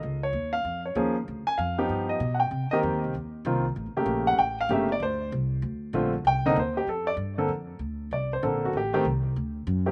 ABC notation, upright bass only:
X:1
M:4/4
L:1/8
Q:"Swing" 1/4=193
K:Bb
V:1 name="Upright bass" clef=bass
_D,,2 E,,2 F,,2 E,,2 | D,, z F,,2 G,,2 =B,,2 | C, z (3F,, E,, C,, E,,2 C,,2 | (3A,,, G,,, =E,,, B,,,2 A,,,2 G,,,2 |
D,,2 C,,2 D,,2 B,,,2 | C,,2 E,,2 F,,2 G,,2 | F,,2 D,,2 C,,2 B,,,2 | A,,,2 C,,2 D,,2 ^F,,2 |]